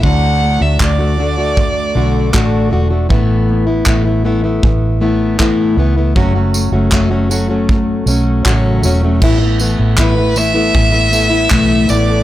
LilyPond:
<<
  \new Staff \with { instrumentName = "Violin" } { \time 4/4 \key a \major \tempo 4 = 78 fis''8. e''16 d''2~ d''8 r8 | r1 | r1 | r4 b'8 e''2 d''8 | }
  \new Staff \with { instrumentName = "Nylon-string guitar" } { \time 4/4 \key a \major fis8 a8 d'8 a'8 a8 d'8 a'8 d'8 | e8 b4 a'8 b8 e'8 a'8 e'8 | fis8 a8 cis'8 a'8 a8 cis'8 a'8 cis'8 | e16 e'16 a'16 e'16 b16 e'16 b16 a'16 e16 e'16 a'16 e'16 b16 e'16 b16 a'16 | }
  \new Staff \with { instrumentName = "Steel-string acoustic guitar" } { \time 4/4 \key a \major <d a d' fis'>8. <a d' fis'>16 <d a d' fis'>16 <a d' fis'>16 <d a d' fis'>16 <a d' fis'>8. <d a d' fis'>8 <d a d' fis'>8 <d a d' fis'>16 <a d' fis'>16 | <a, e a b e'>8. <a b e'>16 <a, e a b e'>16 <a b e'>16 <e a b e'>16 <a b e'>8. <e a b e'>8 <a, e a b e'>8 <e a b e'>16 <a b e'>16 | <fis, cis fis a cis' fis'>16 <fis a cis' fis'>8 <fis a cis' fis'>16 <fis, cis fis a cis' fis'>16 <fis a cis' fis'>16 <fis a cis' fis'>16 <fis a cis' fis'>8. <fis a cis' fis'>8 <fis, cis fis a cis' fis'>8 <fis a cis' fis'>16 <fis a cis' fis'>16 | <a, e a b e'>16 <a b e'>16 <e a b e'>8 <a, e a b e'>16 <a b e'>16 <e a b e'>16 <a b e'>8 <a b e'>16 <e a b e'>16 <a b e'>16 <a, e a b e'>8 <e a b e'>8 | }
  \new Staff \with { instrumentName = "Fingered electric bass" } { \clef bass \time 4/4 \key a \major d,8. d,16 d,4. b,,8 a,,8 e,,8 | a,,4 a,,4 a,,4. cis,8 | fis,,8. fis,,16 fis,,4. b,,8 a,,8 e,,8 | a,,8. a,,4~ a,,16 a,,4 b,,8 a,,8 | }
  \new DrumStaff \with { instrumentName = "Drums" } \drummode { \time 4/4 bd4 <hc bd>4 bd4 <hc bd>4 | bd4 <hc bd>4 bd4 <hc bd>4 | bd8 tamb8 <hc bd>8 tamb8 bd8 tamb8 <hc bd>8 tamb8 | <cymc bd>8 tamb8 <hc bd>8 tamb8 bd8 tamb8 <hc bd>8 tamb8 | }
>>